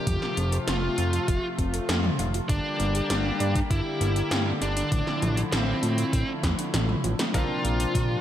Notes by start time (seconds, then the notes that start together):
Already playing: C3 F3 G4
0.07 F1 F3 A3 F4, kick, closed hi-hat, mid tom
0.22 snare
0.37 F1 C4, closed hi-hat
0.52 A4, closed hi-hat
0.68 F1 A3 F4, snare, closed hi-hat
0.98 F2 F5, closed hi-hat
1.13 F4, closed hi-hat
1.28 F1 F3, kick, closed hi-hat
1.58 F1 C4, kick, closed hi-hat
1.74 A4, closed hi-hat
1.89 F2 A3, snare, closed hi-hat
2.04 mid tom
2.19 F1 F5, closed hi-hat
2.34 F4, closed hi-hat
2.49 G1 D3 G3 A#3 D4 G4, kick, closed hi-hat
2.80 G1 A#3, closed hi-hat
2.95 G4, closed hi-hat
3.10 G1 G3, snare, closed hi-hat
3.40 G2 D5, closed hi-hat
3.55 D4, kick, closed hi-hat
3.71 G1 D3 E4, kick, closed hi-hat
4.01 G1 A#3, closed hi-hat
4.16 G4, closed hi-hat
4.31 G2 G3, snare, closed hi-hat
4.62 G1 D4 D5, closed hi-hat
4.77 D4, closed hi-hat
4.92 A1 D3 F3 A3 E4, kick, closed hi-hat, mid tom
5.07 snare
5.22 A1 F3, closed hi-hat, mid tom
5.37 D4, closed hi-hat
5.52 A1 E3 C4, snare, closed hi-hat
5.83 A2 F4, closed hi-hat
5.98 A3, closed hi-hat
6.13 A1 D3, kick, closed hi-hat
6.43 E2 F3, kick, snare, closed hi-hat
6.58 D4, closed hi-hat
6.74 A1 E3, snare, closed hi-hat
6.89 mid tom
7.04 A1 F4, closed hi-hat
7.19 A3, snare, closed hi-hat
7.34 A#1 C3 D3 F3 A#3 C4 D4 F4 A#4, kick, closed hi-hat, mid tom
7.64 A#1 A#3, closed hi-hat
7.80 D4, closed hi-hat
7.95 A#1 F3, kick, closed hi-hat, mid tom